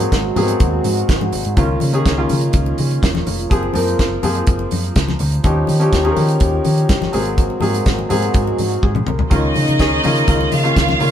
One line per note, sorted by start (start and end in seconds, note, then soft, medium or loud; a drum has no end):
0.00 0.36 F#3 medium
0.00 1.56 G#3 medium
0.00 0.36 A#3 medium
0.00 0.43 C4 medium
0.00 1.55 C4 medium
0.00 1.55 F#4 medium
0.00 0.37 G#4 medium
0.00 closed hi-hat medium
0.00 high conga medium
0.12 0.30 G#1 medium
0.12 kick medium
0.12 snare medium
0.12 closed hi-hat medium
0.12 muted conga soft
0.36 0.54 G#2 medium
0.36 1.23 F#3 medium
0.36 1.23 A#3 medium
0.36 0.42 B3 medium
0.36 1.24 G#4 medium
0.36 open hi-hat medium
0.36 high conga medium
0.36 low conga medium
0.43 1.26 C4 medium
0.48 closed hi-hat soft
0.60 0.78 D#2 medium
0.60 kick loud
0.60 closed hi-hat medium
0.60 muted conga soft
0.84 1.02 G#2 medium
0.84 open hi-hat medium
0.84 high conga medium
0.97 closed hi-hat soft
1.09 1.18 G#1 loud
1.09 kick loud
1.09 snare loud
1.09 closed hi-hat medium
1.09 muted conga soft
1.21 1.30 G#2 medium
1.21 high conga medium
1.32 1.42 G#1 medium
1.32 open hi-hat medium
1.32 low conga medium
1.45 1.54 G#2 medium
1.45 closed hi-hat medium
1.56 1.75 C#2 loud
1.56 3.48 C#3 medium
1.56 1.90 D#3 medium
1.56 5.40 A#3 medium
1.56 1.90 A#3 medium
1.56 1.90 C#4 medium
1.56 3.48 D#4 medium
1.56 5.40 F4 medium
1.56 1.90 F4 medium
1.56 kick loud
1.56 closed hi-hat medium
1.56 muted conga soft
1.56 low conga medium
1.80 2.00 C#3 loud
1.80 open hi-hat medium
1.80 high conga medium
1.93 2.15 D#3 medium
1.93 2.15 A#3 medium
1.93 2.15 C#4 medium
1.93 2.16 G#4 medium
1.93 closed hi-hat soft
2.06 2.24 C#2 medium
2.06 kick medium
2.06 snare loud
2.06 closed hi-hat medium
2.06 muted conga soft
2.17 3.04 D#3 medium
2.17 3.05 A#3 medium
2.17 3.05 C#4 medium
2.17 3.05 F4 medium
2.29 2.48 C#3 medium
2.29 open hi-hat medium
2.29 high conga medium
2.29 low conga medium
2.41 closed hi-hat soft
2.53 2.72 C#2 loud
2.53 kick loud
2.53 closed hi-hat medium
2.53 muted conga soft
2.66 muted conga soft
2.78 2.97 C#3 medium
2.78 open hi-hat medium
2.78 high conga medium
2.91 closed hi-hat soft
3.03 3.21 E1 loud
3.03 kick loud
3.03 snare loud
3.03 closed hi-hat medium
3.15 snare soft
3.15 muted conga soft
3.15 high conga medium
3.27 3.45 F1 medium
3.27 open hi-hat medium
3.27 low conga medium
3.39 closed hi-hat soft
3.50 3.69 F#1 loud
3.50 3.72 F3 medium
3.50 5.43 F3 medium
3.50 3.72 A#3 medium
3.50 3.73 C4 medium
3.50 3.73 G#4 medium
3.50 kick loud
3.50 closed hi-hat medium
3.50 muted conga soft
3.50 low conga medium
3.63 muted conga soft
3.74 3.93 F#2 loud
3.74 4.18 F3 medium
3.74 4.18 A#3 medium
3.74 4.18 C4 medium
3.74 4.19 A#4 medium
3.74 open hi-hat medium
3.74 high conga medium
3.88 closed hi-hat soft
3.99 4.17 F#1 medium
3.99 kick medium
3.99 snare medium
3.99 closed hi-hat medium
4.23 4.41 F#2 medium
4.23 5.10 F3 medium
4.23 5.10 A#3 medium
4.23 5.10 C4 medium
4.23 5.11 G#4 medium
4.23 open hi-hat medium
4.23 high conga medium
4.23 low conga medium
4.35 closed hi-hat soft
4.47 4.65 F#1 medium
4.47 kick loud
4.47 closed hi-hat medium
4.47 muted conga soft
4.59 muted conga soft
4.71 4.90 F#2 medium
4.71 open hi-hat medium
4.71 high conga medium
4.84 closed hi-hat soft
4.96 5.14 C#2 medium
4.96 kick loud
4.96 snare loud
4.96 closed hi-hat medium
5.08 snare soft
5.08 high conga medium
5.19 5.38 D2 medium
5.19 open hi-hat medium
5.19 low conga medium
5.32 closed hi-hat soft
5.44 5.62 D#2 loud
5.44 7.12 D#3 medium
5.44 5.77 F3 medium
5.44 5.77 C#4 medium
5.44 7.12 C#4 medium
5.44 5.77 D#4 medium
5.44 7.12 F4 medium
5.44 7.12 G4 medium
5.44 5.77 G4 medium
5.44 kick loud
5.44 closed hi-hat medium
5.44 low conga medium
5.67 5.87 D#3 loud
5.67 open hi-hat medium
5.67 high conga medium
5.79 6.02 F3 medium
5.79 6.02 C#4 medium
5.79 6.02 D#4 medium
5.79 6.02 G4 medium
5.79 closed hi-hat soft
5.93 6.10 D#2 medium
5.93 kick medium
5.93 snare medium
5.93 closed hi-hat medium
5.93 muted conga soft
6.04 6.91 F3 medium
6.04 6.91 C#4 medium
6.04 6.92 D#4 medium
6.04 6.11 G#4 medium
6.04 muted conga soft
6.11 6.95 A#4 medium
6.17 6.35 D#3 medium
6.17 open hi-hat medium
6.17 high conga medium
6.17 low conga medium
6.29 closed hi-hat soft
6.40 6.59 D#2 medium
6.40 kick loud
6.40 closed hi-hat medium
6.64 6.83 D#3 loud
6.64 open hi-hat medium
6.64 high conga medium
6.78 closed hi-hat soft
6.89 7.07 G1 medium
6.89 kick loud
6.89 snare loud
6.89 closed hi-hat medium
7.02 snare soft
7.02 muted conga soft
7.02 high conga medium
7.12 7.49 G#1 medium
7.12 7.56 F#3 medium
7.12 9.14 G#3 medium
7.12 7.57 A#3 medium
7.12 7.57 C4 medium
7.12 9.14 C4 medium
7.12 9.14 F#4 medium
7.12 7.57 G#4 medium
7.12 open hi-hat medium
7.12 low conga medium
7.26 closed hi-hat soft
7.38 kick loud
7.38 closed hi-hat medium
7.38 muted conga soft
7.38 low conga medium
7.50 muted conga soft
7.60 7.80 G#2 loud
7.60 8.05 F#3 medium
7.60 8.05 A#3 medium
7.60 8.05 C4 medium
7.60 8.05 G#4 medium
7.60 open hi-hat medium
7.60 high conga medium
7.74 closed hi-hat soft
7.86 8.04 G#1 medium
7.86 kick loud
7.86 snare medium
7.86 closed hi-hat medium
7.86 muted conga soft
7.99 muted conga soft
8.09 8.28 G#2 medium
8.09 8.96 F#3 medium
8.09 8.97 A#3 medium
8.09 8.97 C4 medium
8.09 8.82 G#4 loud
8.09 open hi-hat medium
8.09 high conga medium
8.09 low conga medium
8.22 closed hi-hat soft
8.34 8.52 G#2 medium
8.34 kick loud
8.34 closed hi-hat medium
8.34 muted conga soft
8.47 muted conga soft
8.59 8.76 G#2 medium
8.59 open hi-hat medium
8.59 high conga medium
8.71 closed hi-hat soft
8.83 9.01 G#2 loud
8.83 9.06 G#4 medium
8.83 kick loud
8.83 high tom medium
8.95 mid tom medium
8.95 muted conga soft
8.95 high conga medium
9.07 9.25 C2 medium
9.07 9.53 A#4 medium
9.07 mid tom medium
9.07 low conga medium
9.19 floor tom medium
9.30 9.49 C#2 loud
9.30 11.11 C#3 medium
9.30 9.74 D#3 medium
9.30 9.74 A#3 medium
9.30 11.11 A#3 medium
9.30 9.75 C#4 medium
9.30 11.11 D#4 medium
9.30 10.49 D#4 medium
9.30 9.75 F4 medium
9.30 10.50 D#5 medium
9.30 kick loud
9.30 closed hi-hat medium
9.30 muted conga soft
9.30 low conga medium
9.54 9.65 C#3 medium
9.54 open hi-hat medium
9.54 high conga medium
9.68 9.77 C#3 loud
9.68 closed hi-hat soft
9.68 high conga medium
9.79 9.97 C#2 medium
9.79 10.01 D#3 medium
9.79 10.01 A#3 medium
9.79 10.01 C#4 medium
9.79 10.02 G#4 medium
9.79 kick loud
9.79 snare loud
9.79 closed hi-hat medium
9.79 muted conga soft
10.03 10.22 C#3 medium
10.03 10.25 D#3 medium
10.03 10.25 A#3 medium
10.03 10.26 C#4 medium
10.03 10.26 F4 medium
10.03 open hi-hat medium
10.03 high conga medium
10.03 low conga medium
10.16 closed hi-hat soft
10.27 10.46 C#2 medium
10.27 10.60 D#3 medium
10.27 10.60 A#3 medium
10.27 10.61 C#4 medium
10.27 10.61 F4 medium
10.27 kick loud
10.27 closed hi-hat medium
10.27 muted conga soft
10.41 muted conga soft
10.52 10.70 C#3 medium
10.52 11.11 F4 medium
10.52 11.11 F5 medium
10.52 open hi-hat medium
10.52 high conga medium
10.63 10.96 D#3 medium
10.63 10.96 A#3 medium
10.63 10.97 C#4 medium
10.63 10.97 F4 medium
10.63 closed hi-hat soft
10.76 10.94 C#2 loud
10.76 kick loud
10.76 snare loud
10.76 closed hi-hat medium
10.89 snare soft
10.89 muted conga soft
10.89 high conga medium
10.99 11.11 C#3 loud
10.99 11.11 D#3 medium
10.99 11.11 A#3 medium
10.99 11.11 C#4 medium
10.99 11.11 F4 medium
10.99 open hi-hat medium
10.99 low conga medium